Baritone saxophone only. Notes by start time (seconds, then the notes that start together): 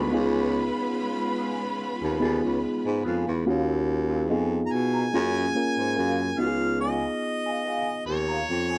0.14 C#2
2.03 D#2
2.22 D#2
2.44 C#2
2.86 G#2
3.05 F2
3.28 E2
3.47 D#2
4.30 F2
4.72 B2
5.14 F#2
5.78 G#2
5.98 F#2
6.40 C#2
8.07 D#2
8.50 F2